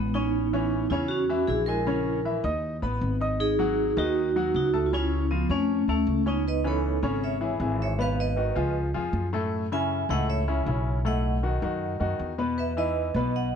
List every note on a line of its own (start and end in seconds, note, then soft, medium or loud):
0.00 0.85 A1 medium
0.00 0.12 G#3 medium
0.00 0.12 B3 medium
0.14 0.88 B3 medium
0.14 0.46 C#4 medium
0.14 0.87 D#4 medium
0.14 0.46 C#5 medium
0.14 0.46 C#6 medium
0.53 0.84 E3 medium
0.53 0.84 C#4 medium
0.53 0.85 C#5 medium
0.90 1.44 E2 medium
0.90 1.22 C#3 medium
0.90 1.23 C#4 medium
0.90 1.10 C#4 medium
0.90 1.10 E4 medium
0.90 1.23 C#5 medium
1.08 1.46 C#4 medium
1.08 1.49 F#4 medium
1.29 1.61 E3 medium
1.29 1.61 E4 medium
1.29 1.61 E5 medium
1.47 2.38 A#1 medium
1.47 1.58 E4 medium
1.47 1.56 G#4 loud
1.66 1.83 G#3 medium
1.66 2.41 E4 medium
1.66 1.83 G#4 medium
1.66 2.39 A#4 medium
1.66 1.84 G#5 medium
1.87 2.18 C#3 medium
1.87 2.18 C#4 medium
1.87 2.18 C#5 medium
2.25 2.41 E3 medium
2.25 2.41 E4 medium
2.25 2.41 E5 medium
2.44 2.79 D#2 medium
2.44 2.75 D#4 medium
2.44 2.76 D#5 medium
2.44 2.76 D#6 medium
2.82 3.00 A1 medium
2.82 3.14 B3 medium
2.82 3.14 B4 medium
2.82 3.14 B5 medium
3.01 3.91 G#1 medium
3.20 3.52 D#4 medium
3.20 3.52 D#5 medium
3.20 3.52 D#6 medium
3.40 3.93 D#4 medium
3.40 3.99 G#4 loud
3.59 3.90 F#3 medium
3.59 3.91 F#4 medium
3.59 3.91 F#5 medium
3.97 4.50 D#2 medium
3.97 4.28 D#3 medium
3.97 4.29 D#4 medium
3.97 4.52 D#4 medium
3.97 4.51 F#4 loud
3.97 4.29 D#5 medium
4.36 4.67 F#3 medium
4.36 4.67 F#4 medium
4.36 4.67 F#5 medium
4.54 5.44 C#2 medium
4.54 4.84 D#4 medium
4.54 4.84 F#4 loud
4.73 4.89 A3 medium
4.73 4.89 A4 medium
4.73 4.89 A5 medium
4.86 4.93 F4 medium
4.93 5.24 C#3 medium
4.93 5.24 C#4 medium
4.93 5.29 C#4 medium
4.93 5.29 E4 loud
4.93 5.24 C#5 medium
5.31 5.47 F3 medium
5.31 5.40 F3 medium
5.31 5.39 B3 medium
5.31 5.47 F4 medium
5.31 5.47 F5 medium
5.49 5.85 F2 medium
5.49 5.87 A3 medium
5.49 5.82 C#4 medium
5.49 5.88 C#4 medium
5.49 5.82 C#5 medium
5.49 5.82 C#6 medium
5.88 6.06 D2 medium
5.88 6.20 A3 medium
5.88 6.25 A3 medium
5.88 6.28 C#4 medium
5.88 6.20 A4 medium
5.88 6.20 A5 medium
6.07 6.97 C#2 medium
6.26 7.00 B3 medium
6.26 6.42 C#4 medium
6.26 7.00 D#4 medium
6.26 6.42 C#5 medium
6.26 6.42 C#6 medium
6.48 6.65 B4 medium
6.48 6.65 D#5 loud
6.64 6.96 E3 medium
6.64 6.96 C#4 medium
6.64 7.19 A4 medium
6.64 6.96 B4 medium
6.64 7.23 C#5 medium
7.03 7.56 G#1 medium
7.03 7.34 C#3 medium
7.03 7.35 C#4 medium
7.03 7.35 C#5 medium
7.24 7.59 C#5 medium
7.24 7.59 E5 medium
7.41 7.57 E3 medium
7.41 7.57 E4 medium
7.41 7.57 G#4 medium
7.60 8.50 G#1 medium
7.60 7.92 E3 medium
7.60 7.92 E4 medium
7.60 7.92 G#4 medium
7.82 7.91 C#5 medium
7.82 7.90 E5 medium
7.98 8.30 B2 medium
7.98 8.30 B3 medium
7.98 8.30 B4 medium
7.98 8.18 B4 medium
7.98 8.19 F5 loud
8.20 8.73 B4 medium
8.20 8.73 D#5 medium
8.36 8.52 D#3 medium
8.36 8.53 D#4 medium
8.36 8.53 F#4 medium
8.55 8.92 C#2 medium
8.55 8.87 F3 medium
8.55 8.87 F4 medium
8.55 8.88 G#4 medium
8.94 9.12 F2 medium
8.94 9.26 F3 medium
8.94 9.26 F4 medium
8.94 9.26 G#4 medium
9.13 10.03 F#2 medium
9.33 9.64 A2 medium
9.33 9.64 A3 medium
9.33 9.65 A4 medium
9.72 10.03 C#3 medium
9.72 10.03 C#4 medium
9.72 10.03 E4 medium
9.72 10.07 E5 medium
9.72 10.07 G#5 loud
10.09 10.63 C#2 medium
10.09 10.41 A2 medium
10.09 10.41 A3 medium
10.09 10.41 A4 medium
10.09 10.28 D#5 medium
10.09 10.28 F#5 loud
10.29 11.01 C#5 medium
10.29 11.08 E5 medium
10.48 10.63 C#3 medium
10.48 10.63 C#4 medium
10.48 10.64 E4 medium
10.66 11.56 B1 medium
10.66 10.98 C#3 medium
10.66 10.98 C#4 medium
10.66 10.98 E4 medium
11.05 11.36 A2 medium
11.05 11.36 A3 medium
11.05 11.36 A4 medium
11.05 12.16 D#5 medium
11.05 12.16 F#5 medium
11.43 11.59 D#3 medium
11.43 11.59 D#4 medium
11.43 11.59 F#4 medium
11.62 11.98 F#2 medium
11.62 11.94 D#3 medium
11.62 11.94 D#4 medium
11.62 11.94 F#4 medium
12.00 12.18 F#2 medium
12.00 12.31 D#3 medium
12.00 12.32 D#4 medium
12.00 12.32 F#4 medium
12.19 13.09 E2 medium
12.38 12.70 B2 medium
12.38 12.70 B3 medium
12.38 12.70 B4 medium
12.58 12.66 B4 medium
12.58 12.68 E5 medium
12.77 13.08 E3 medium
12.77 13.09 D#4 medium
12.77 13.09 E4 medium
12.77 13.31 B4 medium
12.77 13.35 D#5 medium
13.14 13.55 B1 medium
13.14 13.47 B2 medium
13.14 13.47 B3 medium
13.14 13.47 B4 medium
13.36 13.55 D#5 medium
13.36 13.55 F#5 loud